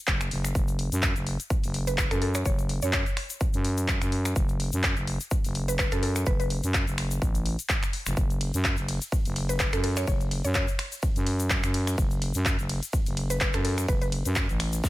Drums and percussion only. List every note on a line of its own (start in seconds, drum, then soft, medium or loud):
0.07 kick loud
0.07 clap loud
0.07 shaker medium
0.21 finger snap medium
0.21 closed hi-hat medium
0.21 shaker soft
0.31 open hi-hat loud
0.45 finger snap medium
0.45 closed hi-hat medium
0.45 shaker medium
0.55 kick loud
0.55 shaker medium
0.68 closed hi-hat soft
0.68 shaker soft
0.79 open hi-hat loud
0.92 closed hi-hat medium
0.92 shaker medium
1.03 kick loud
1.03 clap loud
1.03 shaker medium
1.16 closed hi-hat soft
1.16 shaker soft
1.27 open hi-hat loud
1.40 closed hi-hat medium
1.40 shaker medium
1.50 kick loud
1.50 shaker medium
1.64 open hi-hat medium
1.64 shaker soft
1.74 open hi-hat loud
1.87 closed hi-hat medium
1.87 shaker medium
1.98 kick loud
1.98 clap loud
1.98 shaker medium
2.11 finger snap medium
2.11 closed hi-hat medium
2.11 shaker soft
2.22 open hi-hat loud
2.34 finger snap medium
2.34 closed hi-hat medium
2.34 shaker medium
2.45 kick loud
2.45 shaker medium
2.59 closed hi-hat soft
2.59 shaker soft
2.69 open hi-hat loud
2.82 closed hi-hat medium
2.82 shaker medium
2.93 kick loud
2.93 clap loud
2.93 shaker medium
3.06 closed hi-hat soft
3.06 shaker soft
3.17 finger snap medium
3.17 open hi-hat loud
3.30 closed hi-hat medium
3.30 shaker medium
3.40 kick loud
3.40 shaker medium
3.53 closed hi-hat medium
3.53 shaker soft
3.65 open hi-hat loud
3.78 closed hi-hat medium
3.78 shaker medium
3.88 kick loud
3.88 clap loud
3.88 shaker medium
4.02 finger snap medium
4.02 closed hi-hat medium
4.02 shaker soft
4.12 open hi-hat loud
4.25 finger snap medium
4.25 closed hi-hat medium
4.25 shaker medium
4.36 kick loud
4.36 shaker medium
4.49 closed hi-hat soft
4.49 shaker soft
4.60 open hi-hat loud
4.73 closed hi-hat medium
4.73 shaker medium
4.83 kick loud
4.83 clap loud
4.83 shaker medium
4.96 closed hi-hat soft
4.96 shaker soft
5.07 open hi-hat loud
5.20 closed hi-hat medium
5.20 shaker medium
5.31 kick loud
5.31 shaker medium
5.44 open hi-hat medium
5.44 shaker soft
5.55 open hi-hat loud
5.68 closed hi-hat medium
5.68 shaker medium
5.79 kick loud
5.79 clap loud
5.79 shaker medium
5.92 finger snap medium
5.92 closed hi-hat medium
5.92 shaker soft
6.03 open hi-hat loud
6.16 finger snap medium
6.16 closed hi-hat medium
6.16 shaker medium
6.26 kick loud
6.26 shaker medium
6.40 closed hi-hat soft
6.40 shaker soft
6.50 open hi-hat loud
6.63 closed hi-hat medium
6.63 shaker medium
6.74 kick loud
6.74 clap loud
6.74 shaker medium
6.87 closed hi-hat soft
6.87 shaker soft
6.98 finger snap medium
6.98 open hi-hat loud
7.11 closed hi-hat medium
7.11 shaker medium
7.22 kick loud
7.22 shaker medium
7.35 closed hi-hat medium
7.35 shaker soft
7.46 open hi-hat loud
7.59 closed hi-hat medium
7.59 shaker medium
7.69 kick loud
7.69 clap loud
7.69 shaker medium
7.83 finger snap medium
7.83 closed hi-hat medium
7.83 shaker soft
7.93 open hi-hat loud
8.06 finger snap medium
8.06 closed hi-hat medium
8.06 shaker medium
8.17 kick loud
8.17 shaker medium
8.30 closed hi-hat soft
8.30 shaker soft
8.41 open hi-hat loud
8.41 ride medium
8.54 closed hi-hat medium
8.54 shaker medium
8.64 kick loud
8.64 clap loud
8.64 shaker medium
8.77 closed hi-hat soft
8.77 shaker soft
8.88 open hi-hat loud
8.88 ride medium
9.02 closed hi-hat medium
9.02 shaker medium
9.12 kick loud
9.12 shaker medium
9.25 open hi-hat medium
9.25 shaker soft
9.36 open hi-hat loud
9.36 ride medium
9.49 closed hi-hat medium
9.49 shaker medium
9.60 kick loud
9.60 clap loud
9.60 shaker medium
9.73 finger snap medium
9.73 closed hi-hat medium
9.73 shaker soft
9.84 open hi-hat loud
9.84 ride medium
9.97 finger snap medium
9.97 closed hi-hat medium
9.97 shaker medium
10.07 kick loud
10.07 shaker medium
10.21 closed hi-hat soft
10.21 shaker soft
10.31 open hi-hat loud
10.31 ride medium
10.45 closed hi-hat medium
10.45 shaker medium
10.54 kick loud
10.54 clap loud
10.54 shaker medium
10.68 closed hi-hat soft
10.68 shaker soft
10.79 finger snap medium
10.79 open hi-hat loud
10.79 ride medium
10.92 closed hi-hat medium
10.92 shaker medium
11.02 kick loud
11.02 shaker medium
11.16 closed hi-hat medium
11.16 shaker soft
11.27 open hi-hat loud
11.27 ride medium
11.40 closed hi-hat medium
11.40 shaker medium
11.50 kick loud
11.50 clap loud
11.50 shaker medium
11.64 finger snap medium
11.64 closed hi-hat medium
11.64 shaker soft
11.74 open hi-hat loud
11.74 ride medium
11.87 finger snap medium
11.87 closed hi-hat medium
11.87 shaker medium
11.98 kick loud
11.98 shaker medium
12.11 closed hi-hat soft
12.11 shaker soft
12.22 open hi-hat loud
12.22 ride medium
12.34 closed hi-hat medium
12.34 shaker medium
12.45 kick loud
12.45 clap loud
12.45 shaker medium
12.59 closed hi-hat soft
12.59 shaker soft
12.69 open hi-hat loud
12.69 ride medium
12.83 closed hi-hat medium
12.83 shaker medium
12.93 kick loud
12.93 shaker medium
13.06 open hi-hat medium
13.06 shaker soft
13.17 open hi-hat loud
13.17 ride medium
13.30 closed hi-hat medium
13.30 shaker medium
13.41 kick loud
13.41 clap loud
13.41 shaker medium
13.53 finger snap medium
13.53 closed hi-hat medium
13.53 shaker soft
13.65 open hi-hat loud
13.65 ride medium
13.78 finger snap medium
13.78 closed hi-hat medium
13.78 shaker medium
13.88 kick loud
13.88 shaker medium
14.02 closed hi-hat soft
14.02 shaker soft
14.12 open hi-hat loud
14.12 ride medium
14.25 closed hi-hat medium
14.25 shaker medium
14.35 kick loud
14.35 clap loud
14.35 shaker medium
14.49 closed hi-hat soft
14.49 shaker soft
14.60 finger snap medium
14.60 open hi-hat loud
14.60 ride medium
14.73 closed hi-hat medium
14.73 shaker medium
14.84 kick loud
14.84 snare medium
14.84 shaker medium